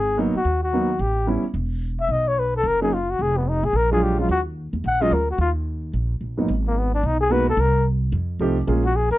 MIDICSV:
0, 0, Header, 1, 5, 480
1, 0, Start_track
1, 0, Key_signature, -6, "minor"
1, 0, Tempo, 273848
1, 1758, Time_signature, 4, 2, 24, 8
1, 16094, End_track
2, 0, Start_track
2, 0, Title_t, "Flugelhorn"
2, 0, Program_c, 0, 56
2, 0, Note_on_c, 0, 68, 85
2, 320, Note_off_c, 0, 68, 0
2, 643, Note_on_c, 0, 66, 76
2, 1073, Note_off_c, 0, 66, 0
2, 1107, Note_on_c, 0, 66, 73
2, 1771, Note_on_c, 0, 67, 77
2, 1798, Note_off_c, 0, 66, 0
2, 2245, Note_off_c, 0, 67, 0
2, 3517, Note_on_c, 0, 76, 84
2, 3710, Note_on_c, 0, 75, 77
2, 3736, Note_off_c, 0, 76, 0
2, 3994, Note_on_c, 0, 73, 82
2, 4020, Note_off_c, 0, 75, 0
2, 4194, Note_on_c, 0, 71, 75
2, 4220, Note_off_c, 0, 73, 0
2, 4466, Note_off_c, 0, 71, 0
2, 4503, Note_on_c, 0, 69, 87
2, 4683, Note_on_c, 0, 70, 94
2, 4709, Note_off_c, 0, 69, 0
2, 4936, Note_off_c, 0, 70, 0
2, 4946, Note_on_c, 0, 68, 76
2, 5145, Note_on_c, 0, 65, 67
2, 5172, Note_off_c, 0, 68, 0
2, 5438, Note_on_c, 0, 66, 79
2, 5464, Note_off_c, 0, 65, 0
2, 5643, Note_on_c, 0, 68, 85
2, 5669, Note_off_c, 0, 66, 0
2, 5914, Note_on_c, 0, 59, 64
2, 5941, Note_off_c, 0, 68, 0
2, 6109, Note_on_c, 0, 63, 73
2, 6135, Note_off_c, 0, 59, 0
2, 6399, Note_on_c, 0, 68, 88
2, 6425, Note_off_c, 0, 63, 0
2, 6596, Note_on_c, 0, 70, 99
2, 6622, Note_off_c, 0, 68, 0
2, 6869, Note_off_c, 0, 70, 0
2, 6879, Note_on_c, 0, 68, 86
2, 7070, Note_on_c, 0, 67, 74
2, 7096, Note_off_c, 0, 68, 0
2, 7346, Note_off_c, 0, 67, 0
2, 7372, Note_on_c, 0, 65, 72
2, 7531, Note_off_c, 0, 65, 0
2, 7555, Note_on_c, 0, 66, 89
2, 7719, Note_off_c, 0, 66, 0
2, 8538, Note_on_c, 0, 78, 88
2, 8796, Note_on_c, 0, 75, 86
2, 8822, Note_off_c, 0, 78, 0
2, 9001, Note_on_c, 0, 70, 71
2, 9028, Note_off_c, 0, 75, 0
2, 9273, Note_off_c, 0, 70, 0
2, 9303, Note_on_c, 0, 66, 68
2, 9458, Note_off_c, 0, 66, 0
2, 9483, Note_on_c, 0, 65, 76
2, 9645, Note_off_c, 0, 65, 0
2, 11704, Note_on_c, 0, 58, 74
2, 11887, Note_on_c, 0, 59, 72
2, 11913, Note_off_c, 0, 58, 0
2, 12155, Note_off_c, 0, 59, 0
2, 12168, Note_on_c, 0, 62, 79
2, 12378, Note_on_c, 0, 63, 77
2, 12404, Note_off_c, 0, 62, 0
2, 12622, Note_off_c, 0, 63, 0
2, 12632, Note_on_c, 0, 68, 98
2, 12828, Note_on_c, 0, 71, 90
2, 12854, Note_off_c, 0, 68, 0
2, 13104, Note_off_c, 0, 71, 0
2, 13141, Note_on_c, 0, 69, 84
2, 13331, Note_on_c, 0, 70, 85
2, 13358, Note_off_c, 0, 69, 0
2, 13786, Note_off_c, 0, 70, 0
2, 15516, Note_on_c, 0, 66, 86
2, 15708, Note_on_c, 0, 68, 76
2, 15735, Note_off_c, 0, 66, 0
2, 15964, Note_off_c, 0, 68, 0
2, 15975, Note_on_c, 0, 70, 94
2, 16094, Note_off_c, 0, 70, 0
2, 16094, End_track
3, 0, Start_track
3, 0, Title_t, "Grand piano"
3, 0, Program_c, 1, 0
3, 303, Note_on_c, 1, 54, 66
3, 312, Note_on_c, 1, 58, 62
3, 321, Note_on_c, 1, 59, 56
3, 330, Note_on_c, 1, 63, 78
3, 570, Note_off_c, 1, 54, 0
3, 574, Note_off_c, 1, 58, 0
3, 579, Note_off_c, 1, 59, 0
3, 584, Note_off_c, 1, 63, 0
3, 1276, Note_on_c, 1, 54, 56
3, 1288, Note_on_c, 1, 58, 53
3, 1293, Note_on_c, 1, 59, 51
3, 1303, Note_on_c, 1, 63, 62
3, 1537, Note_off_c, 1, 54, 0
3, 1543, Note_off_c, 1, 58, 0
3, 1546, Note_off_c, 1, 59, 0
3, 1551, Note_off_c, 1, 63, 0
3, 2221, Note_on_c, 1, 55, 60
3, 2230, Note_on_c, 1, 59, 54
3, 2242, Note_on_c, 1, 61, 60
3, 2250, Note_on_c, 1, 64, 69
3, 2490, Note_off_c, 1, 55, 0
3, 2495, Note_off_c, 1, 59, 0
3, 2501, Note_off_c, 1, 61, 0
3, 2505, Note_off_c, 1, 64, 0
3, 4925, Note_on_c, 1, 54, 61
3, 4931, Note_on_c, 1, 58, 58
3, 4935, Note_on_c, 1, 61, 59
3, 4947, Note_on_c, 1, 63, 70
3, 5100, Note_off_c, 1, 54, 0
3, 5102, Note_off_c, 1, 58, 0
3, 5104, Note_off_c, 1, 61, 0
3, 5111, Note_off_c, 1, 63, 0
3, 6852, Note_on_c, 1, 54, 66
3, 6856, Note_on_c, 1, 56, 57
3, 6871, Note_on_c, 1, 62, 63
3, 6879, Note_on_c, 1, 65, 77
3, 7304, Note_off_c, 1, 54, 0
3, 7305, Note_off_c, 1, 56, 0
3, 7313, Note_off_c, 1, 62, 0
3, 7317, Note_off_c, 1, 65, 0
3, 7333, Note_on_c, 1, 54, 51
3, 7337, Note_on_c, 1, 56, 47
3, 7343, Note_on_c, 1, 61, 44
3, 7355, Note_on_c, 1, 65, 56
3, 7505, Note_off_c, 1, 54, 0
3, 7507, Note_off_c, 1, 56, 0
3, 7510, Note_off_c, 1, 61, 0
3, 7516, Note_off_c, 1, 65, 0
3, 8768, Note_on_c, 1, 54, 74
3, 8786, Note_on_c, 1, 56, 70
3, 8790, Note_on_c, 1, 61, 69
3, 8798, Note_on_c, 1, 65, 81
3, 8943, Note_off_c, 1, 54, 0
3, 8952, Note_off_c, 1, 56, 0
3, 8954, Note_off_c, 1, 61, 0
3, 8958, Note_off_c, 1, 65, 0
3, 11171, Note_on_c, 1, 44, 50
3, 11173, Note_on_c, 1, 54, 50
3, 11185, Note_on_c, 1, 58, 47
3, 11189, Note_on_c, 1, 59, 51
3, 11200, Note_on_c, 1, 63, 55
3, 11345, Note_off_c, 1, 44, 0
3, 11346, Note_off_c, 1, 54, 0
3, 11352, Note_off_c, 1, 58, 0
3, 11354, Note_off_c, 1, 59, 0
3, 11359, Note_off_c, 1, 63, 0
3, 12793, Note_on_c, 1, 56, 59
3, 12802, Note_on_c, 1, 58, 60
3, 12804, Note_on_c, 1, 59, 59
3, 12816, Note_on_c, 1, 63, 61
3, 12822, Note_on_c, 1, 66, 74
3, 13058, Note_off_c, 1, 56, 0
3, 13063, Note_off_c, 1, 58, 0
3, 13063, Note_off_c, 1, 59, 0
3, 13070, Note_off_c, 1, 63, 0
3, 13073, Note_off_c, 1, 66, 0
3, 14732, Note_on_c, 1, 53, 70
3, 14734, Note_on_c, 1, 57, 62
3, 14742, Note_on_c, 1, 60, 62
3, 14752, Note_on_c, 1, 63, 58
3, 14756, Note_on_c, 1, 67, 76
3, 14985, Note_off_c, 1, 53, 0
3, 14986, Note_off_c, 1, 57, 0
3, 14990, Note_off_c, 1, 60, 0
3, 14995, Note_off_c, 1, 63, 0
3, 14997, Note_off_c, 1, 67, 0
3, 15201, Note_on_c, 1, 56, 58
3, 15208, Note_on_c, 1, 58, 58
3, 15216, Note_on_c, 1, 61, 58
3, 15222, Note_on_c, 1, 65, 61
3, 15228, Note_on_c, 1, 68, 68
3, 15459, Note_off_c, 1, 56, 0
3, 15462, Note_off_c, 1, 58, 0
3, 15466, Note_off_c, 1, 61, 0
3, 15469, Note_off_c, 1, 65, 0
3, 15472, Note_off_c, 1, 68, 0
3, 16094, End_track
4, 0, Start_track
4, 0, Title_t, "Upright bass"
4, 0, Program_c, 2, 32
4, 0, Note_on_c, 2, 32, 79
4, 542, Note_off_c, 2, 32, 0
4, 783, Note_on_c, 2, 39, 81
4, 1702, Note_off_c, 2, 39, 0
4, 1741, Note_on_c, 2, 33, 86
4, 2465, Note_off_c, 2, 33, 0
4, 2696, Note_on_c, 2, 28, 84
4, 3620, Note_off_c, 2, 28, 0
4, 3655, Note_on_c, 2, 35, 78
4, 4580, Note_off_c, 2, 35, 0
4, 4616, Note_on_c, 2, 30, 82
4, 5540, Note_off_c, 2, 30, 0
4, 5592, Note_on_c, 2, 29, 76
4, 6313, Note_off_c, 2, 29, 0
4, 6365, Note_on_c, 2, 33, 72
4, 6527, Note_off_c, 2, 33, 0
4, 6537, Note_on_c, 2, 34, 77
4, 7462, Note_off_c, 2, 34, 0
4, 7515, Note_on_c, 2, 39, 86
4, 8235, Note_off_c, 2, 39, 0
4, 8290, Note_on_c, 2, 40, 72
4, 8469, Note_off_c, 2, 40, 0
4, 8483, Note_on_c, 2, 34, 82
4, 8931, Note_off_c, 2, 34, 0
4, 8951, Note_on_c, 2, 38, 70
4, 9404, Note_off_c, 2, 38, 0
4, 9433, Note_on_c, 2, 39, 82
4, 10351, Note_off_c, 2, 39, 0
4, 10403, Note_on_c, 2, 34, 76
4, 10851, Note_off_c, 2, 34, 0
4, 10879, Note_on_c, 2, 34, 63
4, 11328, Note_off_c, 2, 34, 0
4, 11365, Note_on_c, 2, 32, 91
4, 12276, Note_off_c, 2, 32, 0
4, 12327, Note_on_c, 2, 35, 88
4, 13236, Note_off_c, 2, 35, 0
4, 13266, Note_on_c, 2, 36, 89
4, 14183, Note_off_c, 2, 36, 0
4, 14238, Note_on_c, 2, 41, 89
4, 14684, Note_off_c, 2, 41, 0
4, 14713, Note_on_c, 2, 36, 75
4, 15161, Note_off_c, 2, 36, 0
4, 15207, Note_on_c, 2, 34, 92
4, 15916, Note_off_c, 2, 34, 0
4, 15964, Note_on_c, 2, 41, 80
4, 16094, Note_off_c, 2, 41, 0
4, 16094, End_track
5, 0, Start_track
5, 0, Title_t, "Muted upright bass strokes"
5, 589, Note_on_c, 9, 29, 39
5, 764, Note_off_c, 9, 29, 0
5, 2507, Note_on_c, 9, 29, 39
5, 2682, Note_off_c, 9, 29, 0
5, 16094, End_track
0, 0, End_of_file